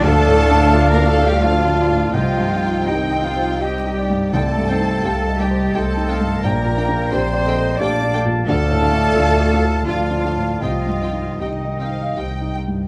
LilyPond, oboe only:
\new Staff \with { instrumentName = "Oboe" } { \time 3/4 \key c \dorian \tempo 4 = 85 f''2 f''4 | g''4 g''4 g''8 r8 | a''2 g''8 f''8 | g''2 a''4 |
f''2 f''4 | ees''4 ees''4. r8 | }